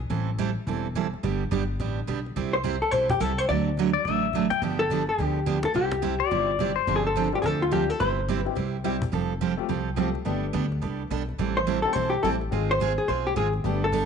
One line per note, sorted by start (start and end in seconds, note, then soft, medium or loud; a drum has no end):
0.10 0.55 A1 medium
0.10 0.29 E3 medium
0.10 0.29 G3 medium
0.10 0.29 C4 medium
0.10 0.29 E4 medium
0.10 0.30 A4 medium
0.10 cajon bass soft
0.10 cajon slap soft
0.38 0.49 E3 medium
0.38 0.49 G3 medium
0.38 0.49 C4 medium
0.38 0.49 E4 medium
0.38 0.50 A4 medium
0.38 cajon bass soft
0.38 cajon slap soft
0.67 1.12 E1 medium
0.67 0.86 E3 medium
0.67 0.86 G3 medium
0.67 0.87 C4 medium
0.67 0.87 E4 medium
0.67 0.87 A4 medium
0.67 cajon bass soft
0.67 cajon slap soft
0.95 1.06 E3 medium
0.95 1.06 G3 medium
0.95 1.06 C4 medium
0.95 1.06 E4 medium
0.95 1.06 A4 medium
0.95 cajon bass soft
0.95 cajon slap soft
1.14 cajon slap soft
1.23 1.46 G1 medium
1.23 1.42 D3 medium
1.23 1.43 G3 medium
1.23 1.43 B3 medium
1.23 1.43 D4 medium
1.23 1.43 G4 medium
1.23 cajon bass soft
1.23 cajon slap soft
1.51 1.76 G1 medium
1.51 1.62 D3 medium
1.51 1.62 G3 medium
1.51 1.62 B3 medium
1.51 1.62 D4 medium
1.51 1.63 G4 medium
1.51 cajon bass soft
1.51 cajon slap soft
1.80 2.04 A1 medium
1.80 1.99 D3 soft
1.80 1.99 G3 medium
1.80 1.99 B3 medium
1.80 1.99 D4 medium
1.80 1.99 G4 medium
1.80 cajon bass soft
1.80 cajon slap soft
2.07 2.32 B1 medium
2.07 2.18 D3 medium
2.07 2.18 G3 medium
2.07 2.19 B3 medium
2.07 2.19 D4 medium
2.07 2.19 G4 medium
2.07 cajon bass soft
2.07 cajon slap soft
2.26 cajon slap soft
2.36 2.81 C2 medium
2.36 2.55 C3 medium
2.36 2.55 G3 medium
2.36 2.56 C4 medium
2.36 2.56 E4 medium
2.36 2.56 G4 medium
2.36 cajon bass soft
2.36 cajon slap soft
2.53 2.82 C5 medium
2.53 cajon slap soft
2.64 2.75 C3 medium
2.64 2.75 G3 medium
2.64 2.75 C4 medium
2.64 2.75 E4 medium
2.64 2.76 G4 medium
2.64 cajon bass soft
2.64 cajon slap soft
2.82 2.91 A4 medium
2.91 3.16 B1 medium
2.91 3.12 C3 soft
2.91 3.12 G3 soft
2.91 3.12 C4 medium
2.91 3.12 E4 medium
2.91 3.12 G4 medium
2.91 3.10 C5 medium
2.91 cajon bass soft
2.91 cajon slap soft
3.10 3.21 G4 medium
3.10 cajon bass soft
3.20 3.45 C2 medium
3.20 3.31 C3 medium
3.20 3.31 G3 medium
3.20 3.32 C4 medium
3.20 3.32 E4 medium
3.20 3.32 G4 medium
3.20 3.38 A4 medium
3.20 cajon bass soft
3.20 cajon slap soft
3.38 3.48 C5 loud
3.38 cajon slap soft
3.49 3.94 D2 medium
3.49 3.68 D3 medium
3.49 3.68 F#3 medium
3.49 3.68 A3 medium
3.49 3.69 D4 medium
3.49 3.69 F#4 medium
3.49 4.01 D5 medium
3.49 cajon bass soft
3.49 cajon slap soft
3.77 3.89 D3 medium
3.77 3.89 F#3 medium
3.77 3.89 A3 medium
3.77 3.89 D4 medium
3.77 3.89 F#4 medium
3.77 cajon bass soft
3.77 cajon slap soft
3.93 4.05 D5 medium
3.93 cajon slap soft
4.05 4.50 A1 medium
4.05 4.26 D3 soft
4.05 4.26 F#3 soft
4.05 4.26 A3 medium
4.05 4.26 D4 medium
4.05 4.26 F#4 medium
4.05 4.49 E5 medium
4.05 cajon bass soft
4.05 cajon slap soft
4.33 4.45 D3 medium
4.33 4.45 F#3 medium
4.33 4.45 A3 medium
4.33 4.45 D4 medium
4.33 4.46 F#4 medium
4.33 cajon bass soft
4.33 cajon slap soft
4.50 4.61 G5 medium
4.50 cajon slap soft
4.62 5.07 G1 medium
4.62 4.82 D3 medium
4.62 4.82 F3 medium
4.62 4.82 B3 medium
4.62 4.82 D4 medium
4.62 4.82 G4 medium
4.62 cajon bass soft
4.62 cajon slap soft
4.79 5.05 A4 loud
4.90 5.01 D3 medium
4.90 5.02 F3 medium
4.90 5.02 B3 medium
4.90 5.02 D4 medium
4.90 5.02 G4 medium
4.90 cajon bass soft
4.90 cajon slap soft
5.07 5.65 G4 medium
5.07 cajon slap soft
5.18 5.64 D2 medium
5.18 5.38 D3 medium
5.18 5.38 F3 soft
5.18 5.39 B3 medium
5.18 5.39 D4 medium
5.18 5.39 G4 medium
5.18 cajon bass soft
5.18 cajon slap soft
5.46 5.57 D3 medium
5.46 5.57 F3 medium
5.46 5.58 B3 medium
5.46 5.57 D4 medium
5.46 5.58 G4 medium
5.46 cajon bass soft
5.46 cajon slap soft
5.63 5.75 A4 medium
5.63 cajon slap medium
5.74 6.20 C2 medium
5.74 5.94 C3 medium
5.74 5.94 G3 medium
5.74 5.94 C4 medium
5.74 5.94 E4 medium
5.74 5.94 G4 medium
5.74 6.34 G4 medium
5.74 cajon bass soft
5.74 cajon slap soft
5.92 cajon slap medium
6.02 6.13 C3 medium
6.02 6.14 G3 medium
6.02 6.14 C4 medium
6.02 6.14 E4 medium
6.02 6.14 G4 medium
6.02 cajon bass soft
6.02 cajon slap soft
6.20 6.75 D5 loud
6.20 cajon slap soft
6.31 6.76 G1 medium
6.31 6.50 C3 soft
6.31 6.51 G3 soft
6.31 6.51 C4 medium
6.31 6.51 E4 medium
6.31 6.56 F4 medium
6.31 6.51 G4 medium
6.31 cajon bass soft
6.31 cajon slap soft
6.59 6.71 C3 medium
6.59 6.71 G3 medium
6.59 6.71 C4 medium
6.59 6.71 E4 medium
6.59 6.71 G4 medium
6.59 cajon bass soft
6.59 cajon slap soft
6.76 6.95 C5 medium
6.76 cajon slap soft
6.87 7.33 G1 medium
6.87 7.07 C3 medium
6.87 7.07 F3 medium
6.87 7.07 C4 medium
6.87 7.07 D4 medium
6.87 7.07 G4 medium
6.87 cajon bass soft
6.87 cajon slap soft
6.96 7.05 G#4 medium
7.07 7.32 A4 medium
7.16 7.27 C3 medium
7.16 7.27 F3 medium
7.16 7.27 C4 medium
7.16 7.28 D4 medium
7.16 7.27 G4 medium
7.16 cajon bass soft
7.16 cajon slap soft
7.33 7.43 G3 medium
7.33 7.43 C4 medium
7.33 7.43 D4 medium
7.33 7.43 F4 medium
7.33 7.42 G4 medium
7.33 cajon slap soft
7.42 7.89 D2 medium
7.42 7.63 C3 medium
7.42 7.63 F3 medium
7.42 7.63 C4 medium
7.42 7.63 D4 medium
7.42 7.63 G4 medium
7.42 7.46 G#4 medium
7.42 7.62 A4 medium
7.42 cajon bass soft
7.42 cajon slap soft
7.62 7.72 F4 medium
7.71 7.83 C3 medium
7.71 7.83 F3 medium
7.71 7.87 G3 medium
7.71 7.83 C4 medium
7.71 7.88 C4 medium
7.71 7.83 D4 medium
7.71 7.88 D4 medium
7.71 7.88 F4 medium
7.71 7.83 G4 medium
7.71 7.90 G4 medium
7.71 cajon bass soft
7.71 cajon slap soft
7.90 8.01 A4 loud
7.90 cajon slap soft
8.00 8.46 G1 medium
8.00 8.19 C3 medium
8.00 8.20 G3 medium
8.00 8.20 C4 medium
8.00 8.20 E4 medium
8.00 8.20 G4 medium
8.00 8.38 C5 loud
8.00 cajon bass soft
8.00 cajon slap soft
8.29 8.40 C3 medium
8.29 8.40 G3 medium
8.29 8.40 C4 medium
8.29 8.40 E4 medium
8.29 8.40 G4 medium
8.29 cajon bass soft
8.29 cajon slap soft
8.38 8.53 B4 loud
8.45 8.56 G3 medium
8.45 8.56 C4 medium
8.45 8.56 E4 medium
8.45 8.56 G4 medium
8.45 cajon slap soft
8.55 9.02 C2 medium
8.55 8.76 C3 medium
8.55 8.76 G3 soft
8.55 8.76 C4 medium
8.55 8.76 E4 medium
8.55 8.76 G4 medium
8.55 cajon bass soft
8.55 cajon slap soft
8.84 8.96 C3 medium
8.84 9.00 G3 medium
8.84 8.96 G3 medium
8.84 9.00 C4 medium
8.84 8.96 C4 medium
8.84 8.96 E4 medium
8.84 9.01 E4 medium
8.84 8.96 G4 medium
8.84 9.01 G4 medium
8.84 cajon bass soft
8.84 cajon slap soft
9.02 cajon bass soft
9.12 9.58 F1 medium
9.12 9.32 F3 medium
9.12 9.32 G3 medium
9.12 9.32 C4 medium
9.12 9.32 G4 medium
9.12 9.33 A4 medium
9.12 cajon bass soft
9.12 cajon slap soft
9.41 9.52 F3 medium
9.41 9.52 G3 medium
9.41 9.52 C4 medium
9.41 9.53 G4 medium
9.41 9.53 A4 medium
9.41 cajon bass soft
9.41 cajon slap soft
9.57 9.68 A3 medium
9.57 9.68 C4 medium
9.57 9.69 F4 medium
9.57 9.69 G4 medium
9.57 cajon slap soft
9.69 10.14 C2 medium
9.69 9.89 F3 medium
9.69 9.89 G3 medium
9.69 9.89 C4 medium
9.69 9.89 G4 soft
9.69 9.89 A4 medium
9.69 cajon bass soft
9.69 cajon slap soft
9.96 10.08 F3 medium
9.96 10.08 G3 medium
9.96 10.13 A3 medium
9.96 10.08 C4 medium
9.96 10.13 C4 soft
9.96 10.14 F4 medium
9.96 10.08 G4 medium
9.96 10.14 G4 medium
9.96 10.08 A4 medium
9.96 cajon bass soft
9.96 cajon slap soft
10.15 cajon slap soft
10.25 10.49 G1 medium
10.25 10.45 G3 medium
10.25 11.04 A3 medium
10.25 10.45 B3 medium
10.25 11.04 B3 medium
10.25 10.45 D4 medium
10.25 11.04 D4 medium
10.25 11.05 G4 medium
10.25 10.46 A4 medium
10.25 cajon bass soft
10.25 cajon slap soft
10.53 10.78 D2 loud
10.53 10.65 G3 medium
10.53 10.65 B3 medium
10.53 10.65 D4 medium
10.53 10.65 A4 medium
10.53 cajon bass soft
10.53 cajon slap soft
10.72 cajon slap soft
10.81 11.06 C2 medium
10.81 11.02 G3 medium
10.81 11.01 B3 medium
10.81 11.02 D4 medium
10.81 11.02 A4 medium
10.81 cajon bass soft
10.81 cajon slap soft
11.10 11.34 B1 medium
11.10 11.22 G3 medium
11.10 11.22 B3 medium
11.10 11.22 D4 medium
11.10 11.22 A4 medium
11.10 cajon bass soft
11.10 cajon slap soft
11.29 cajon slap soft
11.38 11.84 A1 medium
11.38 11.58 E3 medium
11.38 11.58 G3 medium
11.38 11.59 C4 medium
11.38 11.58 E4 medium
11.38 11.59 A4 medium
11.38 cajon bass soft
11.38 cajon slap soft
11.57 11.82 C5 medium
11.67 11.78 E3 medium
11.67 11.78 G3 medium
11.67 11.78 C4 medium
11.67 11.79 E4 medium
11.67 11.78 A4 medium
11.67 cajon bass soft
11.67 cajon slap soft
11.82 11.94 A3 medium
11.82 11.94 C4 medium
11.82 11.94 E4 medium
11.82 11.95 G4 medium
11.82 11.93 A4 medium
11.82 cajon slap soft
11.93 12.19 B1 medium
11.93 12.15 E3 medium
11.93 12.15 G3 soft
11.93 12.15 C4 soft
11.93 12.15 E4 medium
11.93 12.15 A4 medium
11.93 12.12 C5 medium
11.93 cajon bass soft
11.93 cajon slap soft
12.10 12.21 G4 medium
12.22 12.47 A1 medium
12.22 12.35 E3 medium
12.22 12.35 G3 medium
12.22 12.38 A3 medium
12.22 12.38 C4 medium
12.22 12.35 C4 medium
12.22 12.39 E4 medium
12.22 12.35 E4 medium
12.22 12.39 G4 medium
12.22 12.28 A4 medium
12.22 12.35 A4 medium
12.22 cajon bass soft
12.22 cajon slap soft
12.41 cajon slap soft
12.51 12.97 G#1 medium
12.51 13.29 G#3 medium
12.51 12.71 G#3 medium
12.51 13.29 C4 medium
12.51 12.71 C4 medium
12.51 13.30 F4 medium
12.51 12.72 F4 medium
12.51 13.30 G#4 medium
12.51 12.72 G#4 medium
12.51 cajon bass soft
12.51 cajon slap soft
12.71 12.99 C5 loud
12.80 12.91 G#3 medium
12.80 12.91 C4 medium
12.80 12.91 F4 medium
12.80 12.92 G#4 medium
12.80 cajon bass soft
12.80 cajon slap soft
12.98 13.08 G#4 medium
12.98 cajon slap soft
13.08 13.32 B1 medium
13.08 13.28 G#3 soft
13.08 13.28 C4 soft
13.08 13.28 F4 medium
13.08 13.28 G#4 medium
13.08 13.26 C5 medium
13.08 cajon bass soft
13.08 cajon slap soft
13.27 13.37 G4 medium
13.36 13.60 G#1 medium
13.36 13.47 G#3 medium
13.36 13.47 C4 medium
13.36 13.47 F4 medium
13.36 13.47 G#4 medium
13.36 13.53 G#4 medium
13.36 cajon bass soft
13.36 cajon slap soft
13.53 cajon slap soft
13.64 14.05 G1 medium
13.64 13.84 G3 medium
13.64 13.80 A3 medium
13.64 13.80 B3 medium
13.64 13.84 B3 medium
13.64 13.80 D4 medium
13.64 13.84 D4 medium
13.64 13.80 G4 medium
13.64 13.84 A4 medium
13.64 cajon bass soft
13.64 cajon slap soft
13.84 14.05 A4 medium
13.92 14.04 G3 medium
13.92 14.04 B3 medium
13.92 14.04 D4 medium
13.92 14.04 A4 medium
13.92 cajon bass soft
13.92 cajon slap soft